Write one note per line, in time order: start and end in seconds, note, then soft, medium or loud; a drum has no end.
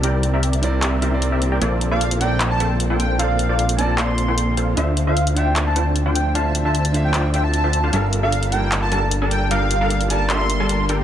0.00 1.59 C2 medium
0.00 0.02 C3 medium
0.00 0.60 C3 medium
0.00 1.58 D3 medium
0.00 1.58 G3 medium
0.00 4.73 A#3 medium
0.00 0.03 C4 medium
0.00 7.89 C4 medium
0.00 0.60 C4 medium
0.00 0.31 C4 medium
0.00 0.04 E4 medium
0.00 1.58 E4 medium
0.00 0.61 E4 medium
0.00 0.31 G4 medium
0.00 0.05 A#4 medium
0.00 0.31 A#4 medium
0.00 0.06 D5 loud
0.00 0.31 D5 medium
0.00 0.31 G5 medium
0.00 closed hi-hat medium
0.05 0.61 A#4 medium
0.05 0.62 D5 medium
0.23 closed hi-hat medium
0.34 0.80 C4 medium
0.34 0.80 G4 medium
0.34 0.80 A#4 medium
0.34 0.80 D5 medium
0.34 0.80 E5 medium
0.43 closed hi-hat medium
0.53 closed hi-hat medium
0.62 1.00 C3 medium
0.62 1.00 C4 medium
0.62 1.00 E4 medium
0.62 1.01 A#4 medium
0.62 1.01 D5 loud
0.62 closed hi-hat medium
0.82 1.00 C4 medium
0.82 1.00 G4 medium
0.82 1.00 A#4 medium
0.82 1.00 D5 medium
0.82 1.00 E5 loud
0.82 clap medium
0.82 closed hi-hat medium
1.01 1.09 C3 medium
1.01 1.10 C4 medium
1.01 1.30 C4 medium
1.01 1.10 E4 medium
1.01 1.30 G4 medium
1.01 1.30 A#4 medium
1.01 1.10 A#4 medium
1.01 1.10 C5 medium
1.01 1.30 D5 medium
1.01 1.30 E5 medium
1.01 closed hi-hat medium
1.10 1.58 C3 medium
1.10 1.59 C4 medium
1.10 1.59 E4 medium
1.10 1.60 A#4 medium
1.10 1.60 D5 medium
1.22 closed hi-hat medium
1.32 1.50 C4 medium
1.32 1.50 G4 medium
1.32 1.50 A#4 medium
1.32 1.50 D5 medium
1.32 1.49 E5 medium
1.42 closed hi-hat medium
1.52 1.59 C4 medium
1.52 1.59 G4 medium
1.52 1.59 A#4 medium
1.52 1.59 D5 medium
1.52 1.59 G5 medium
1.60 4.75 A#1 medium
1.60 2.17 A#2 medium
1.60 11.04 D3 medium
1.60 2.18 A#3 medium
1.60 1.89 A#3 loud
1.60 2.18 C4 medium
1.60 4.74 F4 medium
1.60 1.89 F4 medium
1.60 1.89 A4 medium
1.60 2.19 A4 medium
1.60 1.89 C5 medium
1.60 1.89 D5 loud
1.60 closed hi-hat medium
1.64 2.19 D5 medium
1.81 closed hi-hat medium
1.91 2.58 A#3 medium
1.91 2.58 F4 medium
1.91 2.58 A4 medium
1.91 2.58 C5 medium
1.91 2.58 D5 loud
1.91 2.08 F5 medium
2.01 closed hi-hat medium
2.11 closed hi-hat medium
2.19 3.16 A#2 medium
2.19 3.17 A#3 medium
2.19 3.17 C4 medium
2.19 3.18 A4 medium
2.19 3.18 D5 loud
2.19 2.37 G5 medium
2.19 closed hi-hat medium
2.41 clap medium
2.41 closed hi-hat medium
2.51 2.67 A5 medium
2.60 2.88 A#3 medium
2.60 2.88 F4 medium
2.60 2.88 A4 medium
2.60 2.88 C5 medium
2.60 2.88 G5 medium
2.60 closed hi-hat medium
2.80 closed hi-hat medium
2.90 3.17 A#3 medium
2.90 3.17 F4 medium
2.90 3.17 A4 medium
2.90 3.17 C5 medium
2.90 3.17 G5 medium
3.00 3.16 G5 medium
3.00 closed hi-hat medium
3.17 3.75 A#2 medium
3.17 3.76 A#3 medium
3.17 3.47 A#3 medium
3.17 3.76 C4 medium
3.17 3.47 F4 medium
3.17 3.47 A4 medium
3.17 3.77 A4 medium
3.17 3.47 C5 medium
3.17 3.47 F5 medium
3.17 closed hi-hat medium
3.21 3.77 D5 medium
3.39 closed hi-hat medium
3.49 3.96 A#3 medium
3.49 3.96 F4 medium
3.49 3.96 A4 medium
3.49 3.96 C5 medium
3.49 3.96 D5 medium
3.49 3.55 F5 medium
3.59 3.65 F5 medium
3.59 closed hi-hat medium
3.69 closed hi-hat medium
3.76 4.74 A#2 medium
3.76 4.74 A#3 medium
3.76 4.75 C4 medium
3.76 4.75 A4 medium
3.76 3.95 A5 medium
3.76 closed hi-hat medium
3.81 4.76 D5 medium
3.98 4.26 A#3 medium
3.98 4.26 F4 medium
3.98 4.26 A4 medium
3.98 4.26 C5 medium
3.98 4.26 D5 loud
3.98 4.54 C6 medium
3.98 clap medium
3.98 closed hi-hat medium
4.18 closed hi-hat medium
4.28 4.55 A#3 medium
4.28 4.55 F4 medium
4.28 4.55 A4 medium
4.28 4.55 C5 medium
4.28 4.55 G5 medium
4.38 closed hi-hat medium
4.57 4.75 A#3 medium
4.57 4.75 F4 medium
4.57 4.75 A4 medium
4.57 4.75 C5 medium
4.57 4.75 F5 medium
4.57 closed hi-hat medium
4.75 7.91 D2 medium
4.75 5.33 D3 medium
4.75 5.05 D3 medium
4.75 7.90 F3 medium
4.75 5.34 D4 medium
4.75 5.05 D4 medium
4.75 5.34 F4 medium
4.75 5.05 F4 medium
4.75 5.05 C5 medium
4.75 5.35 C5 medium
4.75 5.05 E5 loud
4.75 7.90 E5 medium
4.75 5.35 E5 medium
4.75 closed hi-hat medium
4.97 closed hi-hat medium
5.07 5.74 D3 loud
5.07 5.74 D4 medium
5.07 5.74 F4 medium
5.07 5.74 C5 medium
5.07 5.74 E5 loud
5.07 5.23 F5 medium
5.17 closed hi-hat medium
5.27 closed hi-hat medium
5.34 6.31 D3 medium
5.34 6.32 D4 medium
5.34 6.33 F4 medium
5.34 6.33 C5 medium
5.34 6.34 E5 medium
5.34 5.53 G5 medium
5.34 closed hi-hat medium
5.56 clap medium
5.56 closed hi-hat medium
5.66 5.83 A5 medium
5.76 6.03 D3 medium
5.76 6.03 D4 medium
5.76 6.03 F4 medium
5.76 6.03 C5 medium
5.76 6.03 G5 medium
5.76 closed hi-hat medium
5.96 closed hi-hat medium
6.06 6.33 D3 medium
6.06 6.33 D4 medium
6.06 6.33 F4 medium
6.06 6.33 C5 medium
6.06 6.33 G5 loud
6.15 6.32 G5 medium
6.15 closed hi-hat medium
6.33 6.91 D3 medium
6.33 6.63 D3 medium
6.33 6.92 D4 medium
6.33 6.63 D4 medium
6.33 6.92 F4 medium
6.33 6.63 F4 medium
6.33 6.63 C5 medium
6.33 6.92 C5 medium
6.33 6.63 F5 medium
6.33 6.52 A5 medium
6.33 closed hi-hat medium
6.37 6.93 E5 medium
6.55 closed hi-hat medium
6.65 7.12 D3 medium
6.65 7.12 D4 medium
6.65 7.12 F4 medium
6.65 7.12 C5 medium
6.65 7.12 E5 medium
6.65 6.81 A5 medium
6.75 closed hi-hat medium
6.85 closed hi-hat medium
6.92 7.90 D3 medium
6.92 7.90 D4 medium
6.92 7.91 F4 medium
6.92 7.91 C5 medium
6.92 7.92 E5 loud
6.92 closed hi-hat medium
7.05 7.21 G5 medium
7.14 7.32 D3 medium
7.14 7.32 D4 medium
7.14 7.32 F4 medium
7.14 7.32 C5 medium
7.14 7.32 D5 loud
7.14 clap medium
7.14 closed hi-hat medium
7.34 7.61 D3 medium
7.34 7.61 D4 medium
7.34 7.61 F4 medium
7.34 7.61 C5 medium
7.34 7.61 E5 medium
7.34 7.42 G5 medium
7.34 closed hi-hat medium
7.44 7.97 A5 medium
7.54 closed hi-hat medium
7.64 7.81 D3 medium
7.64 7.81 D4 medium
7.64 7.81 F4 medium
7.64 7.81 C5 medium
7.64 7.81 E5 medium
7.73 closed hi-hat medium
7.84 7.91 D3 medium
7.84 7.91 D4 medium
7.84 7.91 F4 medium
7.84 7.91 C5 medium
7.84 7.91 F5 medium
7.91 11.04 G1 medium
7.91 8.49 G3 medium
7.91 11.04 G3 medium
7.91 8.21 G3 loud
7.91 11.04 A#3 medium
7.91 8.49 D4 medium
7.91 8.21 D4 medium
7.91 8.50 F4 medium
7.91 11.04 F4 medium
7.91 8.21 A4 medium
7.91 8.50 A4 medium
7.91 8.21 A#4 medium
7.91 8.51 A#4 medium
7.91 8.21 F5 loud
7.91 closed hi-hat medium
8.13 closed hi-hat medium
8.23 8.90 G3 medium
8.23 8.89 D4 medium
8.23 8.90 A4 medium
8.23 8.90 A#4 medium
8.23 8.39 F5 medium
8.23 8.90 F5 loud
8.32 closed hi-hat medium
8.43 closed hi-hat medium
8.50 9.48 G3 medium
8.50 9.50 A#3 loud
8.50 9.48 D4 medium
8.50 9.49 F4 medium
8.50 8.69 G5 medium
8.50 9.49 A5 medium
8.50 closed hi-hat medium
8.72 clap medium
8.72 closed hi-hat medium
8.82 8.98 A5 medium
8.92 9.19 G3 medium
8.92 9.19 D4 medium
8.92 9.19 A4 medium
8.92 9.19 A#4 medium
8.92 9.19 A5 medium
8.92 closed hi-hat medium
9.11 closed hi-hat medium
9.22 9.49 G3 medium
9.22 9.49 D4 medium
9.22 9.49 A4 medium
9.22 9.49 A#4 medium
9.22 9.49 A5 medium
9.31 9.48 G5 medium
9.31 closed hi-hat medium
9.49 10.07 G3 medium
9.49 9.78 G3 medium
9.49 10.07 D4 medium
9.49 9.79 D4 medium
9.49 10.08 F4 medium
9.49 9.78 A4 medium
9.49 10.08 A4 medium
9.49 9.78 A#4 medium
9.49 10.09 A#4 medium
9.49 9.79 F5 medium
9.49 9.78 G5 medium
9.49 closed hi-hat medium
9.71 closed hi-hat medium
9.81 10.28 G3 medium
9.81 10.28 D4 medium
9.81 10.28 A4 medium
9.81 10.28 A#4 medium
9.81 10.28 F5 medium
9.81 9.87 F5 medium
9.90 9.97 F5 medium
9.90 closed hi-hat medium
10.01 closed hi-hat medium
10.08 11.04 G3 medium
10.08 11.04 D4 medium
10.08 11.04 F4 medium
10.08 11.04 A4 medium
10.08 11.04 A#4 loud
10.08 10.27 A5 medium
10.08 closed hi-hat medium
10.30 10.58 G3 medium
10.30 10.58 D4 medium
10.30 10.58 A4 medium
10.30 10.58 A#4 medium
10.30 10.58 E5 loud
10.30 10.85 C6 loud
10.30 clap medium
10.30 closed hi-hat medium
10.50 closed hi-hat medium
10.60 10.87 G3 medium
10.60 10.87 D4 medium
10.60 10.87 A4 medium
10.60 10.87 A#4 medium
10.60 10.87 A5 medium
10.69 closed hi-hat medium
10.89 11.04 G3 medium
10.89 11.04 D4 medium
10.89 11.04 A4 medium
10.89 11.04 A#4 medium
10.89 11.04 G5 medium
10.89 closed hi-hat medium